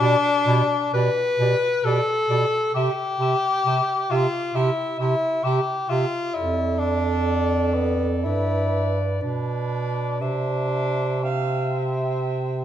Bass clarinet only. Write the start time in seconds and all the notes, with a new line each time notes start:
0.00 B2
0.47 B2
0.93 B2
1.39 B2
1.84 B2
2.29 B2
2.74 C3
3.19 C3
3.66 C3
4.11 C3
4.55 C3
5.00 C3
5.45 C3
5.90 C3
6.36 F2
8.26 G2
9.23 B2
10.22 C3